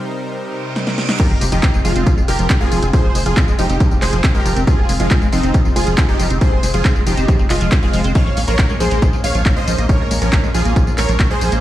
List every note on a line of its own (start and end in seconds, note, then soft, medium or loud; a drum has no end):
0.00 1.16 C3 medium
0.00 1.16 G3 medium
0.00 1.16 D#4 medium
0.00 1.16 A#4 medium
0.00 1.16 C5 medium
0.33 reverse cymbal medium
0.76 snare medium
0.87 snare medium
0.98 snare medium
1.09 snare medium
1.20 1.28 F3 loud
1.20 11.59 G#3 medium
1.20 8.11 C4 medium
1.20 8.11 F4 medium
1.20 1.47 G4 medium
1.20 1.47 A#4 loud
1.20 kick loud
1.20 closed hi-hat medium
1.20 crash loud
1.20 tambourine soft
1.20 impact medium
1.31 1.38 F1 medium
1.31 1.34 F3 medium
1.41 1.49 F1 loud
1.41 1.45 G#3 medium
1.41 open hi-hat loud
1.41 tambourine medium
1.52 1.60 F1 medium
1.52 1.60 F3 medium
1.52 1.80 D#4 medium
1.52 1.80 G4 loud
1.52 closed hi-hat medium
1.52 tambourine soft
1.63 1.68 C4 medium
1.63 kick loud
1.63 clap loud
1.63 closed hi-hat medium
1.63 tambourine soft
1.74 1.82 F1 medium
1.74 1.79 G#3 medium
1.74 tambourine soft
1.85 1.93 F1 loud
1.85 1.93 F3 loud
1.85 2.21 G#3 medium
1.85 2.21 F4 medium
1.85 open hi-hat medium
1.85 tambourine medium
1.96 2.04 F1 medium
1.96 2.04 C4 medium
1.96 closed hi-hat medium
1.96 tambourine soft
2.07 2.14 F3 loud
2.07 kick loud
2.07 closed hi-hat medium
2.07 tambourine soft
2.17 2.25 F1 medium
2.17 2.21 F3 medium
2.17 tambourine soft
2.28 2.36 F1 loud
2.28 2.31 G#3 medium
2.28 2.56 G4 medium
2.28 2.56 A#4 loud
2.28 open hi-hat loud
2.28 tambourine medium
2.39 2.47 F1 medium
2.39 2.47 F3 medium
2.39 closed hi-hat medium
2.39 tambourine soft
2.50 2.55 C4 medium
2.50 kick loud
2.50 clap loud
2.50 closed hi-hat medium
2.50 tambourine soft
2.61 2.69 F1 medium
2.61 2.66 G#3 medium
2.61 2.88 F4 medium
2.61 2.88 G#4 medium
2.61 tambourine soft
2.72 2.80 F1 medium
2.72 2.80 F3 loud
2.72 open hi-hat loud
2.72 tambourine medium
2.83 2.91 F1 medium
2.83 2.90 C4 medium
2.83 closed hi-hat medium
2.83 tambourine soft
2.93 3.01 F3 loud
2.93 3.21 G#4 medium
2.93 3.21 C5 loud
2.93 kick loud
2.93 closed hi-hat medium
2.93 tambourine soft
3.04 3.12 F1 medium
3.04 3.08 F3 medium
3.15 3.23 F1 loud
3.15 3.18 G#3 medium
3.15 open hi-hat loud
3.15 tambourine medium
3.26 3.34 F1 medium
3.26 3.34 F3 medium
3.26 3.54 F4 medium
3.26 3.54 G#4 loud
3.26 closed hi-hat medium
3.26 tambourine soft
3.37 3.42 C4 medium
3.37 kick loud
3.37 clap loud
3.37 closed hi-hat medium
3.37 tambourine soft
3.48 3.56 F1 medium
3.48 3.53 G#3 medium
3.48 tambourine soft
3.59 3.67 F1 loud
3.59 3.67 F3 loud
3.59 3.95 D#4 medium
3.59 3.95 G4 loud
3.59 open hi-hat medium
3.59 tambourine medium
3.70 3.78 F1 medium
3.70 3.77 C4 medium
3.70 closed hi-hat medium
3.70 tambourine soft
3.80 3.88 F3 loud
3.80 kick loud
3.80 closed hi-hat medium
3.80 tambourine soft
3.91 3.99 F1 medium
3.91 3.94 F3 medium
3.91 tambourine soft
4.02 4.10 F1 loud
4.02 4.05 G#3 medium
4.02 4.30 G#4 medium
4.02 4.30 C5 loud
4.02 clap medium
4.02 open hi-hat loud
4.02 tambourine medium
4.13 4.21 F1 medium
4.13 4.21 F3 medium
4.13 closed hi-hat medium
4.13 tambourine soft
4.24 4.29 C4 medium
4.24 kick loud
4.24 clap loud
4.24 closed hi-hat medium
4.24 tambourine soft
4.35 4.43 F1 medium
4.35 4.40 G#3 medium
4.35 4.62 G4 medium
4.35 4.62 A#4 medium
4.35 tambourine soft
4.46 4.54 F1 loud
4.46 4.54 F3 loud
4.46 open hi-hat medium
4.46 tambourine medium
4.56 4.65 F1 medium
4.56 4.64 C4 medium
4.56 closed hi-hat medium
4.56 tambourine soft
4.67 4.75 F3 loud
4.67 4.95 F4 medium
4.67 4.95 G#4 loud
4.67 kick loud
4.67 closed hi-hat medium
4.67 tambourine soft
4.78 4.86 F1 medium
4.78 4.81 F3 medium
4.89 4.97 F1 loud
4.89 4.92 G#3 medium
4.89 open hi-hat loud
4.89 tambourine medium
5.00 5.08 F1 medium
5.00 5.08 F3 medium
5.00 5.27 G#3 medium
5.00 5.27 F4 loud
5.00 closed hi-hat medium
5.00 tambourine soft
5.11 5.16 C4 medium
5.11 kick loud
5.11 clap loud
5.11 closed hi-hat medium
5.11 tambourine soft
5.22 5.30 F1 medium
5.22 5.27 G#3 medium
5.22 tambourine soft
5.32 5.41 F1 loud
5.32 5.40 F3 loud
5.32 5.69 C4 medium
5.32 5.69 D#4 medium
5.32 open hi-hat medium
5.32 tambourine medium
5.43 5.52 F1 medium
5.43 5.51 C4 medium
5.43 closed hi-hat medium
5.43 tambourine soft
5.54 5.62 F3 loud
5.54 kick loud
5.54 closed hi-hat medium
5.54 tambourine soft
5.65 5.73 F1 medium
5.65 5.68 F3 medium
5.65 tambourine soft
5.76 5.84 F1 loud
5.76 5.79 G#3 medium
5.76 6.03 F4 medium
5.76 6.03 G#4 loud
5.76 open hi-hat loud
5.76 tambourine medium
5.87 5.95 F1 medium
5.87 5.95 F3 medium
5.87 closed hi-hat medium
5.87 tambourine soft
5.98 6.03 C4 medium
5.98 kick loud
5.98 clap loud
5.98 closed hi-hat medium
5.98 tambourine soft
6.09 6.17 F1 medium
6.09 6.14 G#3 medium
6.09 6.36 D#4 medium
6.09 6.36 G4 medium
6.09 tambourine soft
6.19 6.28 F1 medium
6.19 6.27 F3 loud
6.19 open hi-hat loud
6.19 tambourine medium
6.30 6.39 F1 medium
6.30 6.38 C4 medium
6.30 closed hi-hat medium
6.30 tambourine soft
6.41 6.49 F3 loud
6.41 6.69 G#4 medium
6.41 6.69 C5 loud
6.41 kick loud
6.41 closed hi-hat medium
6.41 tambourine soft
6.52 6.60 F1 medium
6.52 6.55 F3 medium
6.63 6.71 F1 loud
6.63 6.66 G#3 medium
6.63 open hi-hat loud
6.63 tambourine medium
6.74 6.82 F1 medium
6.74 6.82 F3 medium
6.74 7.01 F4 medium
6.74 7.01 G#4 medium
6.74 closed hi-hat medium
6.74 tambourine soft
6.85 6.90 C4 medium
6.85 kick loud
6.85 clap loud
6.85 closed hi-hat medium
6.85 tambourine soft
6.96 7.04 F1 medium
6.96 7.01 G#3 medium
6.96 tambourine soft
7.07 7.15 F1 loud
7.07 7.15 F3 loud
7.07 7.43 D#4 medium
7.07 7.43 G4 loud
7.07 open hi-hat loud
7.07 tambourine medium
7.17 7.26 F1 medium
7.17 7.25 C4 medium
7.17 closed hi-hat medium
7.17 tambourine soft
7.28 7.36 F3 loud
7.28 kick loud
7.28 closed hi-hat medium
7.28 tambourine soft
7.39 7.47 F1 medium
7.39 7.42 F3 medium
7.39 tambourine soft
7.50 7.58 F1 loud
7.50 7.77 G#3 medium
7.50 7.53 G#3 medium
7.50 7.78 F4 loud
7.50 clap medium
7.50 open hi-hat loud
7.50 tambourine medium
7.61 7.69 F1 medium
7.61 7.69 F3 medium
7.61 closed hi-hat medium
7.61 tambourine soft
7.72 7.77 C4 medium
7.72 kick loud
7.72 clap loud
7.72 closed hi-hat medium
7.72 tambourine soft
7.83 7.91 F1 medium
7.83 7.88 G#3 medium
7.83 8.10 G#3 medium
7.83 8.10 F4 medium
7.83 tambourine soft
7.93 8.02 F1 loud
7.93 8.01 F3 loud
7.93 open hi-hat loud
7.93 tambourine medium
8.04 8.12 F1 medium
8.04 8.12 C4 medium
8.04 closed hi-hat medium
8.04 tambourine soft
8.15 8.23 F3 loud
8.15 11.60 A#3 medium
8.15 11.60 C#4 medium
8.15 8.43 C#5 medium
8.15 8.43 F5 loud
8.15 kick loud
8.15 closed hi-hat medium
8.15 tambourine soft
8.26 8.34 A#1 medium
8.26 8.29 F3 medium
8.37 8.45 A#1 loud
8.37 8.40 G#3 medium
8.37 open hi-hat loud
8.37 tambourine medium
8.48 8.56 A#1 medium
8.48 8.56 F3 medium
8.48 8.75 A#4 medium
8.48 8.75 C#5 loud
8.48 closed hi-hat medium
8.48 tambourine soft
8.59 8.64 A#3 medium
8.59 kick loud
8.59 clap loud
8.59 closed hi-hat medium
8.59 tambourine soft
8.69 8.78 A#1 medium
8.69 8.75 G#3 medium
8.69 tambourine soft
8.80 8.88 A#1 loud
8.80 8.88 F3 loud
8.80 9.17 G#4 medium
8.80 9.17 C5 medium
8.80 open hi-hat medium
8.80 tambourine medium
8.91 8.99 A#1 medium
8.91 8.99 A#3 medium
8.91 closed hi-hat medium
8.91 tambourine soft
9.02 9.10 F3 loud
9.02 kick loud
9.02 closed hi-hat medium
9.02 tambourine soft
9.13 9.21 A#1 medium
9.13 9.16 F3 medium
9.13 tambourine soft
9.24 9.32 A#1 loud
9.24 9.27 G#3 medium
9.24 9.51 C#5 medium
9.24 9.51 F5 loud
9.24 open hi-hat loud
9.24 tambourine medium
9.35 9.43 A#1 medium
9.35 9.43 F3 medium
9.35 closed hi-hat medium
9.35 tambourine soft
9.46 9.51 A#3 medium
9.46 kick loud
9.46 clap loud
9.46 closed hi-hat medium
9.46 tambourine soft
9.56 9.65 A#1 medium
9.56 9.62 G#3 medium
9.56 9.84 C5 medium
9.56 9.84 D#5 medium
9.56 tambourine soft
9.67 9.75 A#1 loud
9.67 9.75 F3 loud
9.67 open hi-hat medium
9.67 tambourine medium
9.78 9.86 A#1 medium
9.78 9.86 A#3 medium
9.78 closed hi-hat medium
9.78 tambourine soft
9.89 9.97 F3 loud
9.89 10.17 A#4 medium
9.89 10.17 C#5 loud
9.89 kick loud
9.89 closed hi-hat medium
9.89 tambourine soft
10.00 10.08 A#1 medium
10.00 10.03 F3 medium
10.11 10.19 A#1 loud
10.11 10.14 G#3 medium
10.11 open hi-hat loud
10.11 tambourine medium
10.22 10.30 A#1 medium
10.22 10.30 F3 medium
10.22 10.49 C#4 medium
10.22 10.49 A#4 loud
10.22 closed hi-hat medium
10.22 tambourine soft
10.33 10.38 A#3 medium
10.33 kick loud
10.33 clap loud
10.33 closed hi-hat medium
10.33 tambourine soft
10.44 10.52 A#1 medium
10.44 10.49 G#3 medium
10.44 tambourine soft
10.54 10.62 A#1 loud
10.54 10.62 F3 loud
10.54 10.91 F4 medium
10.54 10.91 G#4 loud
10.54 open hi-hat medium
10.54 tambourine medium
10.65 10.73 A#1 medium
10.65 10.73 A#3 medium
10.65 closed hi-hat medium
10.65 tambourine soft
10.76 10.84 F3 loud
10.76 kick loud
10.76 closed hi-hat medium
10.76 tambourine soft
10.87 10.95 A#1 medium
10.87 10.90 F3 medium
10.87 tambourine soft
10.98 11.06 A#1 loud
10.98 11.01 G#3 medium
10.98 11.25 A#4 medium
10.98 11.25 C#5 loud
10.98 clap medium
10.98 open hi-hat loud
10.98 tambourine medium
11.09 11.17 A#1 medium
11.09 11.17 F3 medium
11.09 closed hi-hat medium
11.09 tambourine soft
11.20 11.25 A#3 medium
11.20 kick loud
11.20 clap loud
11.20 closed hi-hat medium
11.20 tambourine soft
11.30 11.39 A#1 medium
11.30 11.36 G#3 medium
11.30 11.58 G#4 medium
11.30 11.58 C5 medium
11.30 tambourine soft
11.41 11.49 A#1 loud
11.41 11.49 F3 loud
11.41 open hi-hat medium
11.41 tambourine medium
11.52 11.60 A#1 medium
11.52 11.60 A#3 medium
11.52 closed hi-hat medium
11.52 tambourine soft